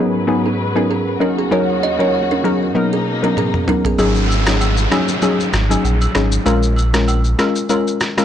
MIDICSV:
0, 0, Header, 1, 7, 480
1, 0, Start_track
1, 0, Tempo, 618557
1, 1175, Time_signature, 4, 2, 24, 8
1, 6401, End_track
2, 0, Start_track
2, 0, Title_t, "Kalimba"
2, 0, Program_c, 0, 108
2, 0, Note_on_c, 0, 59, 59
2, 0, Note_on_c, 0, 68, 75
2, 84, Note_off_c, 0, 68, 0
2, 87, Note_off_c, 0, 59, 0
2, 354, Note_on_c, 0, 68, 67
2, 361, Note_on_c, 0, 59, 50
2, 437, Note_off_c, 0, 68, 0
2, 441, Note_off_c, 0, 59, 0
2, 595, Note_on_c, 0, 70, 69
2, 600, Note_on_c, 0, 61, 57
2, 677, Note_off_c, 0, 70, 0
2, 681, Note_off_c, 0, 61, 0
2, 703, Note_on_c, 0, 68, 85
2, 709, Note_on_c, 0, 59, 65
2, 804, Note_off_c, 0, 68, 0
2, 808, Note_off_c, 0, 59, 0
2, 942, Note_on_c, 0, 70, 76
2, 948, Note_on_c, 0, 61, 59
2, 1044, Note_off_c, 0, 70, 0
2, 1048, Note_off_c, 0, 61, 0
2, 1074, Note_on_c, 0, 68, 74
2, 1081, Note_on_c, 0, 59, 59
2, 1157, Note_off_c, 0, 68, 0
2, 1161, Note_off_c, 0, 59, 0
2, 1181, Note_on_c, 0, 73, 85
2, 1188, Note_on_c, 0, 66, 72
2, 1284, Note_off_c, 0, 73, 0
2, 1288, Note_off_c, 0, 66, 0
2, 1422, Note_on_c, 0, 75, 73
2, 1427, Note_on_c, 0, 66, 58
2, 1524, Note_off_c, 0, 75, 0
2, 1527, Note_off_c, 0, 66, 0
2, 1554, Note_on_c, 0, 73, 72
2, 1560, Note_on_c, 0, 65, 62
2, 1637, Note_off_c, 0, 73, 0
2, 1641, Note_off_c, 0, 65, 0
2, 1794, Note_on_c, 0, 70, 70
2, 1799, Note_on_c, 0, 61, 55
2, 1877, Note_off_c, 0, 70, 0
2, 1880, Note_off_c, 0, 61, 0
2, 1902, Note_on_c, 0, 68, 74
2, 1908, Note_on_c, 0, 59, 57
2, 2004, Note_off_c, 0, 68, 0
2, 2008, Note_off_c, 0, 59, 0
2, 2273, Note_on_c, 0, 68, 63
2, 2279, Note_on_c, 0, 59, 49
2, 2356, Note_off_c, 0, 68, 0
2, 2360, Note_off_c, 0, 59, 0
2, 2513, Note_on_c, 0, 70, 70
2, 2519, Note_on_c, 0, 61, 53
2, 2597, Note_off_c, 0, 70, 0
2, 2600, Note_off_c, 0, 61, 0
2, 2622, Note_on_c, 0, 68, 82
2, 2628, Note_on_c, 0, 59, 65
2, 2724, Note_off_c, 0, 68, 0
2, 2728, Note_off_c, 0, 59, 0
2, 2863, Note_on_c, 0, 70, 76
2, 2868, Note_on_c, 0, 61, 56
2, 2964, Note_off_c, 0, 70, 0
2, 2968, Note_off_c, 0, 61, 0
2, 2994, Note_on_c, 0, 68, 74
2, 3000, Note_on_c, 0, 59, 54
2, 3077, Note_off_c, 0, 68, 0
2, 3081, Note_off_c, 0, 59, 0
2, 6401, End_track
3, 0, Start_track
3, 0, Title_t, "Synth pluck"
3, 0, Program_c, 1, 84
3, 0, Note_on_c, 1, 54, 79
3, 0, Note_on_c, 1, 59, 67
3, 0, Note_on_c, 1, 63, 68
3, 0, Note_on_c, 1, 68, 84
3, 195, Note_off_c, 1, 54, 0
3, 197, Note_off_c, 1, 59, 0
3, 197, Note_off_c, 1, 63, 0
3, 198, Note_off_c, 1, 68, 0
3, 211, Note_on_c, 1, 54, 88
3, 213, Note_on_c, 1, 59, 87
3, 214, Note_on_c, 1, 63, 86
3, 216, Note_on_c, 1, 68, 101
3, 399, Note_off_c, 1, 54, 0
3, 400, Note_off_c, 1, 59, 0
3, 400, Note_off_c, 1, 63, 0
3, 401, Note_off_c, 1, 68, 0
3, 583, Note_on_c, 1, 54, 73
3, 584, Note_on_c, 1, 59, 66
3, 586, Note_on_c, 1, 63, 69
3, 588, Note_on_c, 1, 68, 85
3, 759, Note_off_c, 1, 54, 0
3, 760, Note_off_c, 1, 59, 0
3, 760, Note_off_c, 1, 63, 0
3, 761, Note_off_c, 1, 68, 0
3, 931, Note_on_c, 1, 54, 75
3, 933, Note_on_c, 1, 61, 69
3, 934, Note_on_c, 1, 63, 67
3, 935, Note_on_c, 1, 70, 84
3, 1119, Note_off_c, 1, 54, 0
3, 1120, Note_off_c, 1, 61, 0
3, 1120, Note_off_c, 1, 63, 0
3, 1121, Note_off_c, 1, 70, 0
3, 1172, Note_on_c, 1, 54, 96
3, 1174, Note_on_c, 1, 61, 90
3, 1176, Note_on_c, 1, 63, 86
3, 1177, Note_on_c, 1, 70, 107
3, 1359, Note_off_c, 1, 54, 0
3, 1360, Note_off_c, 1, 61, 0
3, 1361, Note_off_c, 1, 63, 0
3, 1362, Note_off_c, 1, 70, 0
3, 1544, Note_on_c, 1, 54, 74
3, 1545, Note_on_c, 1, 61, 69
3, 1546, Note_on_c, 1, 63, 69
3, 1547, Note_on_c, 1, 70, 83
3, 1867, Note_off_c, 1, 54, 0
3, 1868, Note_off_c, 1, 61, 0
3, 1869, Note_off_c, 1, 63, 0
3, 1869, Note_off_c, 1, 70, 0
3, 1892, Note_on_c, 1, 54, 76
3, 1894, Note_on_c, 1, 61, 70
3, 1895, Note_on_c, 1, 63, 71
3, 1897, Note_on_c, 1, 70, 83
3, 2116, Note_off_c, 1, 54, 0
3, 2117, Note_off_c, 1, 61, 0
3, 2117, Note_off_c, 1, 63, 0
3, 2118, Note_off_c, 1, 70, 0
3, 2132, Note_on_c, 1, 54, 93
3, 2134, Note_on_c, 1, 59, 83
3, 2135, Note_on_c, 1, 63, 89
3, 2136, Note_on_c, 1, 70, 103
3, 2319, Note_off_c, 1, 54, 0
3, 2320, Note_off_c, 1, 59, 0
3, 2321, Note_off_c, 1, 63, 0
3, 2321, Note_off_c, 1, 70, 0
3, 2504, Note_on_c, 1, 54, 77
3, 2506, Note_on_c, 1, 59, 71
3, 2507, Note_on_c, 1, 63, 67
3, 2509, Note_on_c, 1, 70, 84
3, 2679, Note_off_c, 1, 54, 0
3, 2680, Note_off_c, 1, 59, 0
3, 2681, Note_off_c, 1, 63, 0
3, 2682, Note_off_c, 1, 70, 0
3, 2852, Note_on_c, 1, 54, 76
3, 2853, Note_on_c, 1, 59, 72
3, 2855, Note_on_c, 1, 63, 70
3, 2856, Note_on_c, 1, 70, 84
3, 3039, Note_off_c, 1, 54, 0
3, 3040, Note_off_c, 1, 59, 0
3, 3041, Note_off_c, 1, 63, 0
3, 3041, Note_off_c, 1, 70, 0
3, 3092, Note_on_c, 1, 54, 100
3, 3093, Note_on_c, 1, 61, 90
3, 3096, Note_on_c, 1, 63, 94
3, 3097, Note_on_c, 1, 68, 109
3, 3279, Note_off_c, 1, 54, 0
3, 3280, Note_off_c, 1, 61, 0
3, 3281, Note_off_c, 1, 63, 0
3, 3282, Note_off_c, 1, 68, 0
3, 3464, Note_on_c, 1, 54, 77
3, 3466, Note_on_c, 1, 61, 70
3, 3467, Note_on_c, 1, 63, 72
3, 3469, Note_on_c, 1, 68, 82
3, 3640, Note_off_c, 1, 54, 0
3, 3640, Note_off_c, 1, 61, 0
3, 3641, Note_off_c, 1, 63, 0
3, 3642, Note_off_c, 1, 68, 0
3, 3812, Note_on_c, 1, 54, 80
3, 3813, Note_on_c, 1, 61, 74
3, 3814, Note_on_c, 1, 63, 69
3, 3816, Note_on_c, 1, 68, 83
3, 3999, Note_off_c, 1, 54, 0
3, 4000, Note_off_c, 1, 61, 0
3, 4001, Note_off_c, 1, 63, 0
3, 4001, Note_off_c, 1, 68, 0
3, 4052, Note_on_c, 1, 54, 95
3, 4054, Note_on_c, 1, 61, 86
3, 4056, Note_on_c, 1, 63, 86
3, 4057, Note_on_c, 1, 68, 105
3, 4394, Note_off_c, 1, 54, 0
3, 4395, Note_off_c, 1, 61, 0
3, 4396, Note_off_c, 1, 63, 0
3, 4396, Note_off_c, 1, 68, 0
3, 4423, Note_on_c, 1, 54, 74
3, 4425, Note_on_c, 1, 61, 70
3, 4426, Note_on_c, 1, 63, 72
3, 4428, Note_on_c, 1, 68, 87
3, 4747, Note_off_c, 1, 54, 0
3, 4748, Note_off_c, 1, 61, 0
3, 4749, Note_off_c, 1, 63, 0
3, 4750, Note_off_c, 1, 68, 0
3, 4771, Note_on_c, 1, 54, 78
3, 4772, Note_on_c, 1, 61, 73
3, 4774, Note_on_c, 1, 63, 71
3, 4775, Note_on_c, 1, 68, 85
3, 4996, Note_off_c, 1, 54, 0
3, 4996, Note_off_c, 1, 61, 0
3, 4997, Note_off_c, 1, 63, 0
3, 4998, Note_off_c, 1, 68, 0
3, 5010, Note_on_c, 1, 56, 98
3, 5011, Note_on_c, 1, 61, 88
3, 5014, Note_on_c, 1, 65, 93
3, 5015, Note_on_c, 1, 70, 106
3, 5198, Note_off_c, 1, 56, 0
3, 5199, Note_off_c, 1, 61, 0
3, 5200, Note_off_c, 1, 65, 0
3, 5201, Note_off_c, 1, 70, 0
3, 5383, Note_on_c, 1, 56, 77
3, 5384, Note_on_c, 1, 61, 73
3, 5386, Note_on_c, 1, 65, 70
3, 5387, Note_on_c, 1, 70, 81
3, 5559, Note_off_c, 1, 56, 0
3, 5559, Note_off_c, 1, 61, 0
3, 5560, Note_off_c, 1, 65, 0
3, 5561, Note_off_c, 1, 70, 0
3, 5731, Note_on_c, 1, 56, 74
3, 5731, Note_on_c, 1, 61, 73
3, 5733, Note_on_c, 1, 65, 70
3, 5735, Note_on_c, 1, 70, 85
3, 5919, Note_off_c, 1, 56, 0
3, 5919, Note_off_c, 1, 61, 0
3, 5920, Note_off_c, 1, 65, 0
3, 5921, Note_off_c, 1, 70, 0
3, 5970, Note_on_c, 1, 56, 94
3, 5972, Note_on_c, 1, 61, 88
3, 5974, Note_on_c, 1, 65, 88
3, 5975, Note_on_c, 1, 70, 101
3, 6313, Note_off_c, 1, 56, 0
3, 6314, Note_off_c, 1, 61, 0
3, 6314, Note_off_c, 1, 65, 0
3, 6315, Note_off_c, 1, 70, 0
3, 6343, Note_on_c, 1, 56, 73
3, 6344, Note_on_c, 1, 61, 73
3, 6347, Note_on_c, 1, 65, 72
3, 6348, Note_on_c, 1, 70, 83
3, 6401, Note_off_c, 1, 56, 0
3, 6401, Note_off_c, 1, 61, 0
3, 6401, Note_off_c, 1, 65, 0
3, 6401, Note_off_c, 1, 70, 0
3, 6401, End_track
4, 0, Start_track
4, 0, Title_t, "String section"
4, 0, Program_c, 2, 48
4, 0, Note_on_c, 2, 44, 77
4, 0, Note_on_c, 2, 54, 69
4, 0, Note_on_c, 2, 71, 81
4, 924, Note_off_c, 2, 44, 0
4, 924, Note_off_c, 2, 54, 0
4, 924, Note_off_c, 2, 71, 0
4, 934, Note_on_c, 2, 49, 68
4, 935, Note_on_c, 2, 39, 71
4, 935, Note_on_c, 2, 66, 82
4, 2123, Note_off_c, 2, 39, 0
4, 2123, Note_off_c, 2, 49, 0
4, 2123, Note_off_c, 2, 66, 0
4, 2134, Note_on_c, 2, 63, 83
4, 2135, Note_on_c, 2, 47, 72
4, 2135, Note_on_c, 2, 58, 68
4, 3085, Note_off_c, 2, 47, 0
4, 3085, Note_off_c, 2, 58, 0
4, 3085, Note_off_c, 2, 63, 0
4, 6401, End_track
5, 0, Start_track
5, 0, Title_t, "Sub bass"
5, 0, Program_c, 3, 38
5, 3094, Note_on_c, 3, 32, 110
5, 3783, Note_off_c, 3, 32, 0
5, 4294, Note_on_c, 3, 32, 105
5, 4473, Note_off_c, 3, 32, 0
5, 4533, Note_on_c, 3, 34, 98
5, 4712, Note_off_c, 3, 34, 0
5, 4775, Note_on_c, 3, 32, 89
5, 4953, Note_off_c, 3, 32, 0
5, 5013, Note_on_c, 3, 34, 110
5, 5703, Note_off_c, 3, 34, 0
5, 6401, End_track
6, 0, Start_track
6, 0, Title_t, "Downlifter"
6, 0, Program_c, 4, 103
6, 3095, Note_on_c, 4, 60, 79
6, 6401, Note_off_c, 4, 60, 0
6, 6401, End_track
7, 0, Start_track
7, 0, Title_t, "Drums"
7, 2615, Note_on_c, 9, 48, 55
7, 2693, Note_off_c, 9, 48, 0
7, 2747, Note_on_c, 9, 47, 65
7, 2824, Note_off_c, 9, 47, 0
7, 2854, Note_on_c, 9, 45, 86
7, 2932, Note_off_c, 9, 45, 0
7, 2986, Note_on_c, 9, 43, 89
7, 3063, Note_off_c, 9, 43, 0
7, 3093, Note_on_c, 9, 67, 81
7, 3093, Note_on_c, 9, 82, 72
7, 3170, Note_off_c, 9, 67, 0
7, 3170, Note_off_c, 9, 82, 0
7, 3222, Note_on_c, 9, 82, 51
7, 3300, Note_off_c, 9, 82, 0
7, 3330, Note_on_c, 9, 67, 75
7, 3345, Note_on_c, 9, 82, 59
7, 3408, Note_off_c, 9, 67, 0
7, 3423, Note_off_c, 9, 82, 0
7, 3465, Note_on_c, 9, 82, 94
7, 3466, Note_on_c, 9, 37, 114
7, 3469, Note_on_c, 9, 26, 96
7, 3543, Note_off_c, 9, 82, 0
7, 3544, Note_off_c, 9, 37, 0
7, 3547, Note_off_c, 9, 26, 0
7, 3574, Note_on_c, 9, 67, 86
7, 3574, Note_on_c, 9, 77, 84
7, 3576, Note_on_c, 9, 82, 82
7, 3652, Note_off_c, 9, 67, 0
7, 3652, Note_off_c, 9, 77, 0
7, 3653, Note_off_c, 9, 82, 0
7, 3702, Note_on_c, 9, 82, 57
7, 3779, Note_off_c, 9, 82, 0
7, 3815, Note_on_c, 9, 37, 91
7, 3815, Note_on_c, 9, 67, 81
7, 3816, Note_on_c, 9, 82, 51
7, 3819, Note_on_c, 9, 26, 71
7, 3892, Note_off_c, 9, 67, 0
7, 3893, Note_off_c, 9, 37, 0
7, 3893, Note_off_c, 9, 82, 0
7, 3896, Note_off_c, 9, 26, 0
7, 3944, Note_on_c, 9, 82, 81
7, 4022, Note_off_c, 9, 82, 0
7, 4050, Note_on_c, 9, 82, 81
7, 4053, Note_on_c, 9, 67, 79
7, 4127, Note_off_c, 9, 82, 0
7, 4131, Note_off_c, 9, 67, 0
7, 4191, Note_on_c, 9, 82, 53
7, 4268, Note_off_c, 9, 82, 0
7, 4293, Note_on_c, 9, 82, 62
7, 4296, Note_on_c, 9, 37, 98
7, 4299, Note_on_c, 9, 26, 77
7, 4371, Note_off_c, 9, 82, 0
7, 4374, Note_off_c, 9, 37, 0
7, 4377, Note_off_c, 9, 26, 0
7, 4429, Note_on_c, 9, 67, 73
7, 4431, Note_on_c, 9, 82, 87
7, 4506, Note_off_c, 9, 67, 0
7, 4509, Note_off_c, 9, 82, 0
7, 4532, Note_on_c, 9, 77, 79
7, 4539, Note_on_c, 9, 82, 69
7, 4610, Note_off_c, 9, 77, 0
7, 4616, Note_off_c, 9, 82, 0
7, 4664, Note_on_c, 9, 82, 49
7, 4666, Note_on_c, 9, 67, 84
7, 4742, Note_off_c, 9, 82, 0
7, 4744, Note_off_c, 9, 67, 0
7, 4771, Note_on_c, 9, 37, 89
7, 4774, Note_on_c, 9, 26, 73
7, 4781, Note_on_c, 9, 82, 53
7, 4849, Note_off_c, 9, 37, 0
7, 4852, Note_off_c, 9, 26, 0
7, 4859, Note_off_c, 9, 82, 0
7, 4902, Note_on_c, 9, 82, 99
7, 4980, Note_off_c, 9, 82, 0
7, 5011, Note_on_c, 9, 67, 79
7, 5013, Note_on_c, 9, 82, 73
7, 5088, Note_off_c, 9, 67, 0
7, 5091, Note_off_c, 9, 82, 0
7, 5142, Note_on_c, 9, 82, 50
7, 5220, Note_off_c, 9, 82, 0
7, 5249, Note_on_c, 9, 67, 76
7, 5264, Note_on_c, 9, 82, 60
7, 5326, Note_off_c, 9, 67, 0
7, 5341, Note_off_c, 9, 82, 0
7, 5384, Note_on_c, 9, 82, 92
7, 5385, Note_on_c, 9, 37, 120
7, 5389, Note_on_c, 9, 26, 94
7, 5462, Note_off_c, 9, 82, 0
7, 5463, Note_off_c, 9, 37, 0
7, 5466, Note_off_c, 9, 26, 0
7, 5492, Note_on_c, 9, 67, 88
7, 5492, Note_on_c, 9, 77, 88
7, 5495, Note_on_c, 9, 82, 81
7, 5569, Note_off_c, 9, 67, 0
7, 5569, Note_off_c, 9, 77, 0
7, 5572, Note_off_c, 9, 82, 0
7, 5620, Note_on_c, 9, 82, 54
7, 5698, Note_off_c, 9, 82, 0
7, 5733, Note_on_c, 9, 67, 80
7, 5734, Note_on_c, 9, 37, 89
7, 5734, Note_on_c, 9, 82, 52
7, 5737, Note_on_c, 9, 26, 69
7, 5811, Note_off_c, 9, 37, 0
7, 5811, Note_off_c, 9, 67, 0
7, 5812, Note_off_c, 9, 82, 0
7, 5815, Note_off_c, 9, 26, 0
7, 5863, Note_on_c, 9, 82, 83
7, 5941, Note_off_c, 9, 82, 0
7, 5969, Note_on_c, 9, 82, 81
7, 5972, Note_on_c, 9, 67, 85
7, 6046, Note_off_c, 9, 82, 0
7, 6050, Note_off_c, 9, 67, 0
7, 6110, Note_on_c, 9, 82, 54
7, 6188, Note_off_c, 9, 82, 0
7, 6212, Note_on_c, 9, 82, 60
7, 6214, Note_on_c, 9, 37, 100
7, 6218, Note_on_c, 9, 26, 77
7, 6289, Note_off_c, 9, 82, 0
7, 6292, Note_off_c, 9, 37, 0
7, 6295, Note_off_c, 9, 26, 0
7, 6346, Note_on_c, 9, 37, 91
7, 6349, Note_on_c, 9, 26, 71
7, 6349, Note_on_c, 9, 67, 74
7, 6350, Note_on_c, 9, 82, 92
7, 6401, Note_off_c, 9, 26, 0
7, 6401, Note_off_c, 9, 37, 0
7, 6401, Note_off_c, 9, 67, 0
7, 6401, Note_off_c, 9, 82, 0
7, 6401, End_track
0, 0, End_of_file